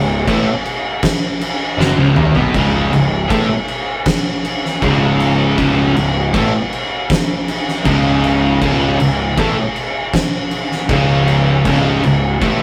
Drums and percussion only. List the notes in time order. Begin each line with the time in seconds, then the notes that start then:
0.28 kick, crash
0.65 crash
1.03 kick, snare, crash
1.41 crash
1.80 snare
2.16 mid tom
2.35 floor tom
2.54 kick, crash
2.93 crash
3.30 kick, crash
3.68 crash
4.06 kick, snare, crash
4.45 crash
4.65 snare
4.82 kick, crash
5.20 crash
5.58 kick, crash
5.96 crash
6.34 kick, crash
6.73 crash
7.10 kick, snare, crash
7.48 crash
7.68 snare
7.85 kick, crash
8.24 crash
8.62 kick, crash
9.00 crash
9.38 kick, crash
9.76 crash
10.13 kick, snare, crash
10.51 crash
10.72 snare
10.89 kick, crash
11.28 crash
11.65 kick, crash
12.03 crash
12.42 kick, crash